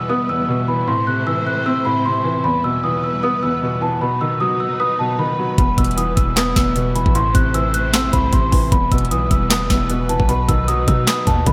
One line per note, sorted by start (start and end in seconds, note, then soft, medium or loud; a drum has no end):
0.00 0.27 E2 medium
0.00 0.47 B2 medium
0.00 0.66 E3 medium
0.00 0.86 G3 medium
0.00 0.86 B3 medium
0.00 3.97 E4 medium
0.00 0.86 B4 medium
0.09 0.88 B3 loud
0.09 0.26 D#6 medium
0.29 0.88 E2 medium
0.29 0.66 E6 medium
0.48 0.88 B2 medium
0.68 0.88 E3 medium
0.68 0.85 B5 medium
0.88 1.84 A2 medium
0.88 2.43 A3 medium
0.88 2.43 C4 medium
0.88 2.43 C5 medium
0.88 1.04 C6 medium
1.07 2.04 C3 medium
1.07 1.24 F#6 medium
1.27 2.23 E3 medium
1.27 1.43 E6 medium
1.47 1.63 F#6 medium
1.66 2.44 C4 loud
1.66 1.83 E6 medium
1.85 2.45 A2 medium
1.85 2.02 B5 medium
2.05 2.45 C3 medium
2.05 2.42 C6 medium
2.24 2.44 E3 medium
2.44 3.41 E2 medium
2.44 4.00 G3 medium
2.44 7.11 B3 medium
2.44 4.00 B4 medium
2.44 2.61 B5 loud
2.64 3.61 B2 medium
2.64 2.81 E6 medium
2.84 3.80 E3 medium
2.84 3.00 D#6 medium
3.04 3.20 E6 medium
3.23 4.02 B3 loud
3.23 3.40 D#6 medium
3.43 4.02 E2 medium
3.43 3.80 E6 medium
3.62 4.00 B2 medium
3.81 4.01 E3 medium
3.81 3.98 A5 medium
4.01 4.98 B2 loud
4.01 5.57 F#3 medium
4.01 5.57 D#4 medium
4.01 7.12 B4 medium
4.01 4.18 B5 medium
4.21 5.17 D#3 medium
4.21 4.38 E6 medium
4.40 5.37 F#3 loud
4.40 4.57 D#6 medium
4.60 4.77 E6 medium
4.80 5.58 B4 medium
4.80 4.96 D#6 loud
4.99 5.58 B2 medium
4.99 5.16 A5 medium
5.19 5.58 D#3 medium
5.19 5.56 B5 medium
5.39 5.58 F#3 medium
5.58 5.77 E1 loud
5.58 6.55 E2 medium
5.58 7.13 G3 medium
5.58 10.25 E4 medium
5.58 5.75 B5 medium
5.58 kick loud
5.58 closed hi-hat medium
5.77 6.16 E1 loud
5.77 6.74 B2 medium
5.77 5.95 E6 medium
5.77 kick medium
5.77 closed hi-hat medium
5.84 closed hi-hat medium
5.91 closed hi-hat soft
5.97 6.94 E3 medium
5.97 6.14 D#6 medium
5.97 closed hi-hat medium
6.17 6.55 E1 loud
6.17 6.33 E6 medium
6.17 kick loud
6.17 closed hi-hat medium
6.37 7.15 B3 loud
6.37 6.53 D#6 medium
6.37 snare loud
6.37 clap medium
6.37 closed hi-hat medium
6.56 7.04 E1 loud
6.56 7.15 E2 medium
6.56 6.93 E6 medium
6.56 kick medium
6.56 snare medium
6.56 closed hi-hat medium
6.76 7.15 B2 medium
6.76 closed hi-hat medium
6.95 7.15 E3 medium
6.95 7.12 B5 medium
6.95 closed hi-hat medium
7.06 7.34 A1 loud
7.06 kick loud
7.15 8.12 A2 loud
7.15 8.70 A3 medium
7.15 8.70 C4 medium
7.15 8.70 C5 medium
7.15 7.32 C6 medium
7.15 closed hi-hat medium
7.35 8.10 A1 loud
7.35 8.31 C3 medium
7.35 7.51 F#6 medium
7.35 kick medium
7.35 closed hi-hat medium
7.54 8.50 E3 medium
7.54 7.71 E6 medium
7.54 closed hi-hat medium
7.74 7.91 F#6 medium
7.74 closed hi-hat medium
7.93 8.72 C4 loud
7.93 8.10 E6 medium
7.93 snare loud
7.93 clap medium
7.93 closed hi-hat medium
8.13 8.32 C2 loud
8.13 8.72 A2 medium
8.13 8.30 B5 medium
8.13 kick medium
8.13 closed hi-hat medium
8.33 8.52 A1 loud
8.33 8.72 C3 medium
8.33 8.70 C6 medium
8.33 kick medium
8.33 closed hi-hat medium
8.51 8.71 A1 loud
8.51 8.72 E3 medium
8.51 kick medium
8.51 open hi-hat medium
8.72 8.91 E1 loud
8.72 9.69 E2 medium
8.72 10.27 G3 medium
8.72 10.27 B3 medium
8.72 11.53 B4 medium
8.72 8.88 B5 loud
8.72 kick loud
8.72 closed hi-hat medium
8.92 9.13 E1 loud
8.92 9.88 B2 medium
8.92 9.08 E6 medium
8.92 kick medium
8.92 closed hi-hat medium
8.98 closed hi-hat medium
9.05 closed hi-hat soft
9.11 9.30 B1 loud
9.11 10.07 E3 medium
9.11 9.28 D#6 medium
9.11 closed hi-hat medium
9.31 9.69 E1 loud
9.31 9.48 E6 medium
9.31 kick loud
9.31 closed hi-hat medium
9.50 10.29 B3 loud
9.50 9.67 D#6 medium
9.50 snare loud
9.50 clap medium
9.50 closed hi-hat medium
9.70 10.18 E1 loud
9.70 10.29 E2 medium
9.70 10.07 E6 medium
9.70 kick medium
9.70 snare medium
9.70 closed hi-hat medium
9.90 10.27 B2 medium
9.90 closed hi-hat medium
10.09 10.29 E3 medium
10.09 10.26 A5 medium
10.09 closed hi-hat medium
10.20 10.47 B1 loud
10.20 kick loud
10.29 11.26 B2 loud
10.29 11.53 F#3 medium
10.29 11.53 B3 medium
10.29 11.53 D#4 medium
10.29 10.45 B5 medium
10.29 closed hi-hat medium
10.48 10.86 B1 loud
10.48 11.45 D#3 medium
10.48 10.65 E6 medium
10.48 kick medium
10.48 closed hi-hat medium
10.68 11.53 F#3 loud
10.68 10.84 D#6 medium
10.68 closed hi-hat medium
10.88 11.07 B2 loud
10.88 11.04 E6 medium
10.88 kick loud
10.88 closed hi-hat medium
11.07 11.53 B4 medium
11.07 11.24 D#6 loud
11.07 snare loud
11.07 clap medium
11.07 closed hi-hat medium
11.27 11.46 D#2 loud
11.27 11.53 B2 medium
11.27 11.43 A5 medium
11.27 kick medium
11.27 closed hi-hat medium
11.46 11.53 B2 loud
11.46 11.53 D#3 medium
11.46 11.53 B5 medium
11.46 kick medium
11.46 closed hi-hat medium